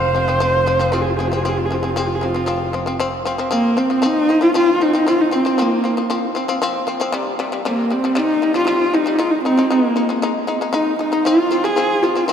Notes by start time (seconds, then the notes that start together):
Already playing: F1 F3 C4 C5
0.15 F3 C4
0.28 F3 C4
0.40 F3 C4
0.66 F3 C4
0.79 F3 C4
0.92 F3 C4 F4
1.01 G#4
1.10 F4
1.17 F3 C4 G#4
1.28 F3 F4
1.33 C4
1.37 G#4
1.43 F3 C4 F4
1.49 G#4
1.57 F4
1.65 G#4
1.71 F3 C4 F4
1.82 F3 C4 G#4
1.90 F4
1.96 F3 C4 G#4
2.07 F4
2.15 G#4
2.21 F3 C4
2.25 F4
2.34 F3 C4
2.46 F3 C4
2.73 F3 C4
2.86 F3 C4
3.00 F3 C4
3.25 F3 C4
3.38 F3 C4
3.51 F3 A#3 C4
3.77 F3 C4
3.90 F3 C4
4.02 F3 C4 D#4
4.29 F3 C4
4.41 F3 C4 F4
4.54 F3 C4 F4
4.81 F3 C4 D#4
4.93 F3 C4
5.07 F3 C4 F4
5.21 D#4
5.31 F3 C4
5.45 F3 C4
5.58 F3 A#3 C4
5.84 F3 C4
5.97 F3 C4
6.10 F3 C4
6.35 F3 C4
6.48 F3 C4
6.62 F3 C4
6.87 F3 C4
7.00 F3 C4
7.12 C3 G3
7.39 C3 G3
7.52 C3 G3
7.65 C3 G3 A#3
7.90 C3 G3 C4
8.04 C3 G3
8.15 C3 G3 D#4
8.42 C3 G3
8.54 C3 G3 F4
8.67 C3 G3 F4
8.94 C3 G3 D#4
9.06 C3 G3
9.19 G#3 D#4 F4
9.31 D#4
9.44 G#3 C4 D#4
9.57 G#3 D#4
9.70 G#3 A#3 D#4
9.96 G#3 D#4
10.09 G#3 D#4
10.22 G#3 D#4
10.47 G#3 D#4
10.61 G#3 D#4
10.73 G#3 D#4
10.99 G#3 D#4
11.12 G#3 D#4
11.25 F3 C4 F4
11.51 F3 C4
11.64 F3 C4 G#4
11.76 F3 C4
12.03 F3 C4 F4
12.15 F3 C4
12.28 F3 C4 F4